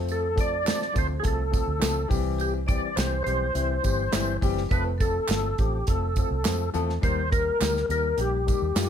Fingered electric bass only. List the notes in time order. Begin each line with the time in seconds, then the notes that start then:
Already playing: F2
0.95 D2
1.25 C2
1.67 D2
1.82 C#2
2.11 C2
2.97 C2
3.26 B1
3.55 C2
3.85 G1
4.13 G1
4.42 F#1
4.71 F1
5.29 G1
5.59 A1
5.88 F1
6.31 C2
6.46 F2
6.74 E2
7.03 D#2
7.61 D2
7.89 D#2
8.18 A#1
8.62 D#2
8.76 F#2